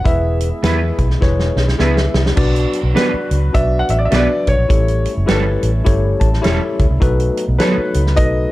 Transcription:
Already playing: B3
0.04 E1 G#3 E4 G#4 B4 E5, kick, closed hi-hat
0.41 closed hi-hat
0.63 E2 B3 E4 G#4 B4 E5, snare, closed hi-hat
0.98 B1, kick, closed hi-hat
1.11 snare
1.21 E1 E4 G#4 B4 C#5, kick, snare
1.40 snare
1.56 B1, snare
1.68 snare
1.79 C#2 B3 E4 G#4 B4 E5, snare
1.97 snare
2.14 C2, snare
2.26 snare
2.36 B1 F#3 B3 D4 F#4 B4 D5, kick, crash
2.56 closed hi-hat
2.73 closed hi-hat
2.83 B1
2.94 B3 D4 F#4 B4 D5, snare, closed hi-hat
3.14 muted fingered electric bass stroke
3.31 C#2, closed hi-hat
3.53 B1 D4 F#4 B4 D5 E5, kick, closed hi-hat
3.79 F#5
3.89 A1 E5, closed hi-hat
3.99 D5
4.05 E5
4.11 B1 B3 D4 F#4 B4 D5 E5, snare, closed hi-hat
4.47 B1 C#5, kick, closed hi-hat
4.59 A#1
4.68 A1 G3 A3 C#4 E4 G4 A4 C#5, kick, closed hi-hat
4.88 closed hi-hat
5.05 closed hi-hat
5.17 F#1
5.26 G1 G3 C#4 E4 G4 A4 B4, snare, closed hi-hat
5.63 A1, closed hi-hat
5.84 G1 E4 G4 A4 C#5, kick, closed hi-hat
6.20 A1 A5, kick, closed hi-hat
6.34 snare
6.42 E1 G3 C#4 E4 G4 A4 C#5 E5, snare, closed hi-hat
6.79 C#2, kick, closed hi-hat
6.91 C2
7.00 B1 F#3 B3 D#4 F#4 A4 B4, kick, closed hi-hat
7.20 closed hi-hat
7.37 closed hi-hat
7.48 B1
7.58 F#3 B3 D#4 F#4 A4 B4 C#5, snare, closed hi-hat
7.78 muted fingered electric bass stroke
7.94 C#2, closed hi-hat
8.07 snare
8.16 B1 D#4 F#4 A4 B4 D#5, kick, closed hi-hat

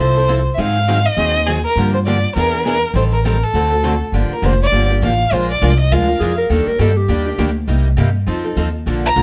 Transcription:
Already playing: C2
0.00 F3 C4 E4 A4 C5
0.17 C4 E4 A4
0.28 F3 C4 E4 A4
0.54 G#2 D#3 F#3 E5
0.58 C4 D#4 G#4 F5
0.88 D#3 F#3 C4 D#4 G#4
1.05 D#5
1.17 D#2 D#3 F#3 C4 D#4 G#4
1.35 C4 D#4 G#4
1.47 D#3 F#3 C4 D#4 G#4
1.64 A#4
1.76 G2 D3 F3 A#3 D4 G4
1.94 C5
2.06 D3 F3 A#3 D4 G4 D5
2.36 E2 E3 B3 D4 G#4 A#4 B4
2.53 B3 D4 G#4
2.65 E3 B3 D4 G#4 A#4 B4
2.94 A1 D#3 G3 C4 G4 A4 C5
3.13 A#4
3.25 D#3 G3 C4 G4 A4 A#4
3.43 A4
3.54 D2 D3 A3 C4 F#4 A4
3.72 C4 F#4 A4
3.84 D3 A3 C4 F#4 A4
4.12 G1 D3 F3 A#3 D4 G4
4.30 A#4, muted upright bass stroke
4.42 F1 D3 F3 A#3 D4 G4 C5
4.63 D5
4.72 G1 D3 F3 A#3 D4 G4
4.89 A#3 D4 G4
5.02 A1 D3 F3 A#3 D4 G4 F5
5.31 A#1 F3 G#3 D4 F4 A#4 C5
5.51 D5
5.62 C2 F3 G#3 D4 F4 A#4
5.80 D#5
5.91 D2 F3 G#3 D4 F4 A#4 F5
6.08 D4 F4 A#4
6.20 F2 F3 G#3 D4 F4 G#4 A#4
6.38 A#4
6.50 D#2 D#3 G3 A#3 D4 G4 A4
6.67 A#4, muted upright bass stroke
6.79 G2 D#3 G3 A#3 D4 G4 A4
6.97 G4
7.08 D#2 D#3 G3 A#3 D4 G4
7.26 A#3 D4 G4
7.38 D2 D#3 G3 A#3 D4 G4
7.68 C2 C3 G3 A#3 D#4 G4
7.97 G2 C3 G3 A#3 D#4 G4
8.27 F2 F3 C4 D#4 A4
8.44 C4 D#4 A4
8.56 D#2 F3 C4 D#4 A4
8.86 A#1 D3 F3 A#3 D4 A4
9.06 A#5
9.16 B1 D3 F3 A#3 D4 A4

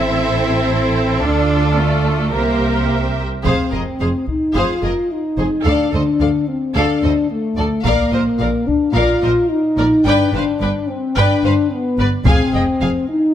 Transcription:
Already playing: A1 C4 E4 A4 C5 E5
0.14 C4
1.24 D2 D4 F4 A4 D5
1.79 A3
2.34 C2 A#3 G4 A#4 C5 E5
3.45 F1 F2 C4 G#4 C5 F5, taiko
3.72 F1 F2 G#4 A#4 D#5
4.00 F1 F2 G#4 C5 F5
4.28 D#4, taiko
4.55 F1 F2 F4 G#4 C5 F5
4.82 F1 F2 G#4 A#4 D#5
5.10 D#4
5.38 F1 F2 G#4 C5
5.65 D2 D4 A4 D5 F5
5.93 D2 D4 A4 C5 D#5
6.21 D2 A4 D5 F5
6.48 C4
6.75 D2 D4 A4 D5 F5
7.03 D2 A4 C5 D#5
7.30 A3
7.57 D2 A4 D5
7.84 A#1 A#2 A#3 A#4 D5 F5, taiko
8.12 A#1 A#2 A#4 C5 D#5
8.39 A#1 A#2 A#4 D5 F5
8.67 D4, taiko
8.94 A#1 A#2 F4 A#4 D5 F5
9.22 A#1 A#2 A#4 C5 D#5
9.48 D#4
9.77 A#1 A#2 A#4 D5
10.05 G1 G2 D4 B4 D5 G5
10.32 G1 G2 D4 B4 C5 F5
10.60 G1 G2 B4 D5 G5
10.88 C4
11.16 G1 G2 D4 B4 D5 G5
11.43 G1 G2 B4 C5 F5
11.70 B3
11.99 G1 G2 B4 D5
12.25 F1 F2 C4 G#4 F5 G#5, taiko
12.53 F1 F2 G#4 D#5 G5
12.81 F1 F2 G#4 F5 G#5
13.08 D#4

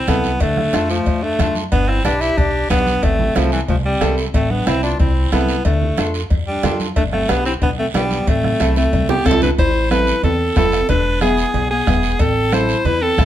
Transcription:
0.08 C2 B3 C4 E4 A4, bombo low, bombo rim, cowbell, high conga, short guiro
0.24 high conga, short guiro
0.40 D2 A3 D4, bombo low, cowbell, long guiro
0.57 bombo rim, high conga, low conga
0.73 F2 D4 F4 A4, bombo rim, cowbell, high conga, short guiro
0.90 F3 A3, short guiro
1.06 F2, bombo low, cowbell, high conga, long guiro
1.23 A3 D4
1.39 F2 D4 F4 A4, bombo low, bombo rim, cowbell, high conga, low conga, short guiro
1.55 high conga, short guiro
1.72 G1 B3 D4, bombo low, cowbell, high conga, long guiro
1.88 C4 E4, bombo rim
2.04 B1 D4 G4 B4, bombo rim, cowbell, high conga, short guiro
2.21 E4 G4, short guiro
2.37 B1 D4 G4, bombo low, cowbell, high conga, long guiro
2.70 B1 B3 D4 G4 D5, bombo low, bombo rim, cowbell, high conga, short guiro
2.86 high conga, short guiro
3.03 A1 A3 C4, bombo low, cowbell, long guiro
3.19 high conga, low conga
3.35 C2 F3 A3 C4 E4 A4, bombo rim, cowbell, high conga, short guiro
3.52 E3 G3, short guiro
3.68 C2 F3 A3, bombo low, cowbell, high conga, long guiro
3.85 G3 C4
4.01 C2 C4 E4 A4, bombo rim, cowbell, high conga, low conga, low timbale, short guiro
4.18 short guiro
4.34 A1 A3 C4, bombo low, cowbell, high conga, long guiro
4.50 B3 D4, high conga
4.66 C2 C4 E4 B4, bombo rim, cowbell, high conga, short guiro
4.83 D4 F4, short guiro
5.00 C2 C4 E4, bombo low, cowbell, high conga, long guiro
5.32 C2 B3 C4 E4 A4, bombo rim, cowbell, high conga, short guiro
5.49 short guiro
5.65 D2 A3 D4, bombo low, cowbell, long guiro
5.81 low conga
5.97 F2 D4 F4 A4, bombo rim, cowbell, high conga, short guiro
6.14 short guiro
6.30 F2, bombo low, cowbell, high conga, long guiro
6.47 G3 D4
6.63 F2 D4 F4 A4, bombo rim, cowbell, high conga, low conga, low timbale, short guiro
6.80 high conga, short guiro
6.96 G1 A3 D4, bombo low, cowbell, long guiro
7.13 A3 C4, bombo rim, high conga
7.28 B1 B3 D4 G4 B4, bombo rim, cowbell, high conga, short guiro
7.45 C4 E4, short guiro
7.62 B1 B3 D4, bombo low, cowbell, high conga, long guiro
7.79 A3 C4
7.94 B1 G3 B3 D4 G4 B4, bombo rim, cowbell, high conga, low timbale, short guiro
8.11 high conga, short guiro
8.27 A1 A3 C4, bombo low, cowbell, long guiro
8.44 bombo rim, high conga, low conga
8.59 C2 C4 E4 A4, bombo rim, cowbell, high conga, short guiro
8.76 A3 C4, high conga, short guiro
8.93 C2, bombo low, cowbell, high conga, long guiro
9.09 B3 G4, low conga, high timbale
9.25 C2 C4 E4 A4, bombo low, bombo rim, cowbell, low conga, short guiro
9.31 low timbale
9.41 D4 B4, low conga, low timbale, short guiro
9.58 A1 E4 C5, bombo low, cowbell, high conga, long guiro
9.91 C4 E4 A4 B4, bombo rim, high conga, short guiro
10.07 short guiro
10.23 E2 C4 A4, cowbell, high conga, low conga, long guiro
10.56 F1 C4 E4 A4 B4, bombo low, bombo rim, high conga, low timbale, short guiro
10.72 bombo rim, short guiro
10.89 E1 D4 B4, bombo low, cowbell, high conga, low conga, long guiro
11.21 B3 E4 G#4, bombo rim, high conga, short guiro
11.38 short guiro
11.54 B1, cowbell, high conga, low conga, long guiro
11.71 B3 G#4
11.87 E1 B3 E4 G#4, bombo low, bombo rim, high conga, short guiro
12.03 short guiro
12.19 A1 C4 A4, bombo low, cowbell, high conga, long guiro
12.52 C4 E4 A4 C5, bombo rim, high conga, short guiro
12.69 short guiro
12.85 E2 E4 B4, cowbell, high conga, low conga, long guiro
13.02 C4 A4
13.17 A1 C4 E4 A4, bombo low, bombo rim, high conga, short guiro

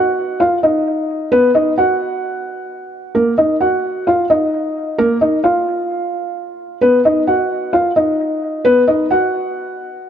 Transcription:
Already playing: F#4 F#5
0.40 F4 F5
0.63 D#4 D#5
1.32 B3 B4
1.55 D#4 D#5
1.78 F#4 F#5
3.15 A#3 A#4
3.38 D#4 D#5
3.61 F#4 F#5
4.07 F4 F5
4.30 D#4 D#5
4.98 A#3 A#4
5.21 D#4 D#5
5.44 F4 F5
6.81 B3 B4
7.05 D#4 D#5
7.27 F#4 F#5
7.73 F4 F5
7.96 D#4 D#5
8.65 B3 B4
8.88 D#4 D#5
9.11 F#4 F#5

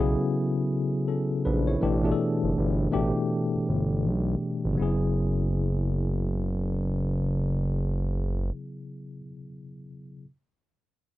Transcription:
Already playing: B1 C#3 F#3 B3 E4 F#4 G#4 A4
1.08 C#4 A4
1.45 A#1 D4 B4
1.67 E4 C#5
1.80 A1 B2 E3 A3 D4 G4
2.03 B2 E3 A3 D4 G#4
2.12 A4
2.43 F#1
2.58 G1
2.91 A1 B2 E3 A3 D4 G4
3.54 G1
3.69 G1
4.06 B1
4.65 G1
4.73 C#3 F#3
4.78 F#1 B3 E4
4.82 G#4

